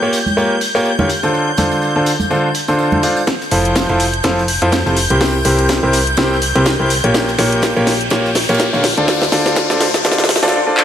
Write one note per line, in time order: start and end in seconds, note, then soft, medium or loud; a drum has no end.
0.00 0.17 A#3 medium
0.00 0.17 F4 medium
0.00 0.17 G4 medium
0.00 0.17 A#4 medium
0.00 0.17 C#5 medium
0.00 3.26 G6 medium
0.13 open hi-hat medium
0.13 tambourine medium
0.26 tambourine soft
0.26 high conga medium
0.37 0.54 A#3 medium
0.37 0.54 F4 medium
0.37 0.54 G4 medium
0.37 0.54 A#4 medium
0.37 0.54 C#5 medium
0.37 tambourine soft
0.61 open hi-hat medium
0.61 tambourine medium
0.75 0.90 A#3 medium
0.75 0.90 F4 medium
0.75 0.90 G4 medium
0.75 0.90 A#4 medium
0.75 0.90 C#5 loud
0.75 tambourine soft
0.85 tambourine soft
0.99 1.08 D3 medium
0.99 1.08 F4 medium
0.99 1.08 G4 medium
0.99 1.08 A#4 medium
0.99 1.08 C#5 medium
0.99 high conga medium
1.10 open hi-hat medium
1.10 tambourine medium
1.23 1.48 D3 medium
1.23 1.49 D4 medium
1.23 1.48 F4 medium
1.23 1.48 A4 medium
1.23 1.49 C5 medium
1.23 tambourine soft
1.34 tambourine soft
1.57 1.93 D3 medium
1.57 1.93 D4 medium
1.57 1.93 F4 medium
1.57 1.93 A4 medium
1.57 1.93 C5 medium
1.57 open hi-hat medium
1.57 tambourine medium
1.57 high conga medium
1.71 tambourine soft
1.82 tambourine soft
1.96 2.11 D3 medium
1.96 2.11 D4 medium
1.96 2.11 F4 medium
1.96 2.11 A4 medium
1.96 2.11 C5 medium
2.06 open hi-hat medium
2.06 tambourine medium
2.20 tambourine soft
2.20 high conga medium
2.31 2.47 D3 medium
2.31 2.48 D4 medium
2.31 2.48 F4 medium
2.31 2.47 A4 medium
2.31 2.47 C5 medium
2.31 tambourine soft
2.55 open hi-hat loud
2.55 tambourine medium
2.68 3.01 D3 medium
2.68 3.01 D4 medium
2.68 3.01 F4 medium
2.68 3.01 A4 medium
2.68 3.01 C5 medium
2.68 tambourine medium
2.79 tambourine soft
2.92 high conga medium
3.03 3.20 D4 medium
3.03 3.20 F4 medium
3.03 3.20 A4 medium
3.03 3.20 C5 medium
3.03 open hi-hat medium
3.03 tambourine medium
3.16 tambourine medium
3.27 10.53 G6 medium
3.27 kick loud
3.27 snare soft
3.27 closed hi-hat medium
3.27 ride medium
3.27 riser medium
3.41 snare soft
3.51 3.87 F1 medium
3.51 3.86 F3 medium
3.51 3.86 E4 medium
3.51 3.86 F4 medium
3.51 3.86 A4 medium
3.51 3.86 C5 medium
3.51 open hi-hat loud
3.51 ride medium
3.65 closed hi-hat medium
3.65 ride soft
3.75 kick loud
3.75 snare loud
3.75 snare soft
3.75 closed hi-hat medium
3.75 ride medium
3.89 4.22 F1 medium
3.89 4.04 F3 medium
3.89 4.04 E4 medium
3.89 4.04 F4 medium
3.89 4.04 A4 medium
3.89 4.04 C5 medium
3.89 ride soft
4.00 open hi-hat loud
4.00 ride medium
4.14 closed hi-hat medium
4.24 4.59 F1 loud
4.24 4.41 F3 medium
4.24 4.41 E4 medium
4.24 4.41 F4 medium
4.24 4.41 A4 medium
4.24 4.41 C5 medium
4.24 kick loud
4.24 snare medium
4.24 closed hi-hat medium
4.24 ride medium
4.38 snare soft
4.48 open hi-hat loud
4.48 ride medium
4.62 4.83 F2 loud
4.62 4.77 F3 medium
4.62 4.77 E4 medium
4.62 4.77 F4 medium
4.62 4.77 A4 medium
4.62 4.77 C5 loud
4.62 closed hi-hat medium
4.72 kick loud
4.72 snare loud
4.72 snare medium
4.72 closed hi-hat medium
4.72 ride medium
4.86 5.08 F1 loud
4.86 4.95 C3 medium
4.86 4.95 E4 medium
4.86 4.95 F4 medium
4.86 4.95 A4 medium
4.86 4.95 C5 medium
4.86 snare soft
4.97 open hi-hat loud
4.97 ride medium
5.10 5.43 C2 medium
5.10 5.36 C3 medium
5.10 5.36 E4 medium
5.10 5.36 G4 medium
5.10 5.36 A#4 medium
5.10 5.36 C5 medium
5.10 closed hi-hat medium
5.21 kick loud
5.21 snare medium
5.21 closed hi-hat medium
5.21 open hi-hat medium
5.45 5.80 C2 medium
5.45 5.80 C3 medium
5.45 5.80 E4 medium
5.45 5.80 G4 medium
5.45 5.80 A#4 medium
5.45 5.80 C5 medium
5.45 open hi-hat loud
5.45 ride medium
5.59 closed hi-hat medium
5.69 kick loud
5.69 snare loud
5.69 snare medium
5.69 closed hi-hat medium
5.69 ride medium
5.83 6.16 C2 medium
5.83 5.98 C3 medium
5.83 5.98 E4 medium
5.83 5.98 G4 medium
5.83 5.98 A#4 medium
5.83 5.98 C5 medium
5.93 snare soft
5.93 open hi-hat loud
5.93 ride medium
6.07 closed hi-hat medium
6.17 6.53 C2 loud
6.17 6.35 C3 medium
6.17 6.35 E4 medium
6.17 6.35 G4 medium
6.17 6.35 A#4 medium
6.17 6.35 C5 medium
6.17 kick loud
6.17 snare medium
6.17 closed hi-hat medium
6.17 ride medium
6.32 snare soft
6.42 open hi-hat loud
6.42 ride medium
6.55 6.77 C2 loud
6.55 6.70 C3 medium
6.55 6.70 E4 medium
6.55 6.70 G4 medium
6.55 6.70 A#4 medium
6.55 6.70 C5 loud
6.55 closed hi-hat medium
6.66 kick loud
6.66 snare loud
6.66 snare medium
6.66 closed hi-hat medium
6.66 ride medium
6.80 7.01 C2 medium
6.80 6.89 E4 medium
6.80 6.89 G4 medium
6.80 6.89 A#4 medium
6.80 6.89 C5 medium
6.90 open hi-hat loud
6.90 ride medium
7.04 7.37 A#1 medium
7.04 7.29 A#3 medium
7.04 7.29 F4 medium
7.04 7.29 G4 medium
7.04 7.29 A#4 medium
7.04 7.29 C#5 medium
7.04 closed hi-hat medium
7.14 kick loud
7.14 snare medium
7.14 closed hi-hat medium
7.14 ride medium
7.28 snare medium
7.38 7.74 A#1 loud
7.38 7.73 A#3 medium
7.38 7.73 F4 medium
7.38 7.73 G4 medium
7.38 7.73 A#4 medium
7.38 7.73 C#5 medium
7.38 snare medium
7.38 open hi-hat loud
7.38 ride medium
7.52 closed hi-hat medium
7.52 ride soft
7.62 kick loud
7.62 snare loud
7.62 snare medium
7.62 closed hi-hat medium
7.62 ride medium
7.77 8.09 A#1 loud
7.77 7.91 A#3 medium
7.77 7.91 F4 medium
7.77 7.91 G4 medium
7.77 7.91 A#4 medium
7.77 7.91 C#5 medium
7.77 ride soft
7.87 snare medium
7.87 open hi-hat loud
7.87 ride medium
8.01 closed hi-hat soft
8.10 8.46 A#1 loud
8.10 8.28 A#3 medium
8.10 8.28 F4 medium
8.10 8.28 G4 medium
8.10 8.28 A#4 medium
8.10 8.28 C#5 medium
8.10 kick loud
8.10 snare medium
8.10 closed hi-hat medium
8.10 ride medium
8.25 snare soft
8.35 snare medium
8.35 open hi-hat loud
8.35 ride medium
8.42 snare medium
8.42 ride medium
8.49 8.71 A#1 loud
8.49 8.64 A#3 loud
8.49 8.64 F4 medium
8.49 8.64 G4 medium
8.49 8.64 A#4 medium
8.49 8.64 C#5 loud
8.49 snare medium
8.49 closed hi-hat soft
8.49 ride medium
8.54 snare medium
8.54 ride medium
8.59 kick loud
8.59 snare loud
8.59 snare medium
8.59 closed hi-hat medium
8.59 ride medium
8.73 8.95 A#1 loud
8.73 8.83 D3 medium
8.73 8.83 F4 medium
8.73 8.83 G4 medium
8.73 8.83 A#4 medium
8.73 8.83 C#5 medium
8.73 snare medium
8.83 snare medium
8.83 open hi-hat loud
8.83 ride medium
8.97 9.30 D2 loud
8.97 9.23 D3 medium
8.97 9.23 F4 medium
8.97 9.23 A4 medium
8.97 9.23 C5 medium
8.97 9.23 D5 medium
8.97 closed hi-hat medium
9.08 kick loud
9.08 snare medium
9.08 closed hi-hat medium
9.08 open hi-hat medium
9.22 snare medium
9.32 9.67 D2 medium
9.32 9.67 D3 medium
9.32 9.67 F4 medium
9.32 9.67 A4 medium
9.32 9.67 C5 medium
9.32 9.67 D5 medium
9.32 snare loud
9.32 open hi-hat loud
9.32 ride medium
9.46 snare medium
9.46 closed hi-hat medium
9.56 kick loud
9.56 snare loud
9.56 snare medium
9.56 closed hi-hat medium
9.56 ride medium
9.70 10.03 D2 loud
9.70 9.85 D3 medium
9.70 9.85 F4 medium
9.70 9.85 A4 medium
9.70 9.85 C5 medium
9.70 9.85 D5 medium
9.70 snare medium
9.81 snare medium
9.81 snare loud
9.81 open hi-hat loud
9.81 ride medium
9.94 snare medium
9.94 closed hi-hat soft
10.05 10.40 D2 loud
10.05 10.22 D3 medium
10.05 10.22 F4 medium
10.05 10.22 A4 medium
10.05 10.22 C5 medium
10.05 10.22 D5 loud
10.05 kick loud
10.05 snare loud
10.05 snare medium
10.05 closed hi-hat medium
10.05 ride medium
10.12 snare medium
10.18 snare soft
10.18 snare medium
10.24 snare medium
10.29 snare loud
10.29 open hi-hat loud
10.29 ride medium
10.36 snare medium
10.43 10.53 D2 loud
10.43 10.57 D3 loud
10.43 10.57 F4 medium
10.43 10.57 A4 medium
10.43 10.57 C5 medium
10.43 10.57 D5 loud
10.43 snare medium
10.43 closed hi-hat medium
10.48 snare medium
10.67 10.82 D3 medium
10.67 10.82 F4 medium
10.67 10.82 A4 medium
10.67 10.82 C5 medium
10.67 10.82 D5 medium
10.77 clap medium